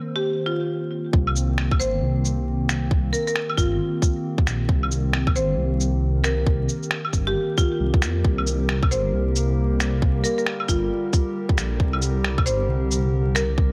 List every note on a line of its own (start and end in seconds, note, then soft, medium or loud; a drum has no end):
0.00 8.24 D#3 medium
0.00 8.25 A#3 medium
0.00 1.15 C4 medium
0.00 8.25 C4 medium
0.00 1.13 G4 medium
0.00 1.15 C5 medium
0.00 2.09 C5 medium
0.16 0.45 G4 medium
0.46 1.10 F4 medium
1.13 1.81 C2 loud
1.13 kick loud
1.27 13.72 G4 medium
1.27 claves medium
1.36 shaker medium
1.58 finger snap loud
1.71 13.72 A#4 medium
1.71 kick loud
1.71 claves medium
1.80 2.01 G1 medium
1.80 2.03 C5 medium
1.80 shaker medium
2.02 2.46 C2 medium
2.25 shaker medium
2.46 3.12 C2 medium
2.69 finger snap loud
2.69 shaker medium
2.91 kick loud
3.13 3.22 A#4 medium
3.13 shaker medium
3.27 3.33 A#4 medium
3.27 shaker soft
3.36 finger snap loud
3.50 claves medium
3.57 3.79 G1 medium
3.57 4.21 F4 medium
3.57 kick medium
3.57 shaker medium
4.02 kick loud
4.02 shaker medium
4.38 kick loud
4.47 4.68 A#1 medium
4.47 finger snap loud
4.47 shaker medium
4.69 5.37 C2 loud
4.69 kick loud
4.83 claves medium
4.91 shaker medium
5.13 finger snap loud
5.27 kick loud
5.27 claves medium
5.35 5.56 G1 medium
5.35 5.59 C5 medium
5.35 shaker medium
5.57 6.01 C2 medium
5.80 shaker medium
6.02 6.68 C2 medium
6.24 6.48 A#4 medium
6.24 finger snap loud
6.24 shaker medium
6.46 kick loud
6.69 shaker medium
6.83 shaker soft
6.91 finger snap loud
7.05 claves medium
7.13 7.34 G1 medium
7.13 kick medium
7.13 shaker medium
7.27 7.56 G4 medium
7.58 8.21 F4 medium
7.58 kick loud
7.58 shaker medium
7.80 8.04 C2 medium
7.94 kick loud
8.02 8.23 F2 loud
8.02 finger snap loud
8.02 shaker medium
8.24 8.93 C2 loud
8.24 13.72 D3 medium
8.24 kick loud
8.38 claves medium
8.46 13.72 G3 loud
8.46 cabasa medium
8.46 shaker medium
8.57 11.73 A#3 medium
8.69 finger snap loud
8.83 kick loud
8.83 claves medium
8.91 9.12 G1 medium
8.91 9.15 C5 medium
8.91 cabasa medium
8.91 shaker medium
9.13 9.57 C2 medium
9.36 cabasa medium
9.36 shaker medium
9.58 10.23 C2 medium
9.80 finger snap loud
9.80 cabasa medium
9.80 shaker medium
10.02 kick loud
10.24 10.33 A#4 medium
10.24 cabasa medium
10.24 shaker medium
10.38 10.44 A#4 medium
10.38 shaker soft
10.47 finger snap loud
10.60 claves medium
10.69 10.90 G1 medium
10.69 11.32 F4 medium
10.69 kick medium
10.69 cabasa medium
10.69 shaker medium
11.13 kick loud
11.13 cabasa medium
11.13 shaker medium
11.49 kick loud
11.58 11.79 A#1 medium
11.58 13.72 C4 medium
11.58 finger snap loud
11.58 cabasa medium
11.58 shaker medium
11.80 12.48 C2 medium
11.80 kick loud
11.93 claves medium
12.02 cabasa medium
12.02 shaker medium
12.25 finger snap loud
12.38 kick loud
12.38 claves medium
12.46 12.68 G1 medium
12.46 12.70 C5 medium
12.46 cabasa medium
12.46 shaker medium
12.69 13.12 C2 medium
12.91 cabasa medium
12.91 shaker medium
13.14 13.72 C2 medium
13.35 13.59 A#4 loud
13.35 finger snap medium
13.35 cabasa medium
13.35 shaker medium
13.58 kick loud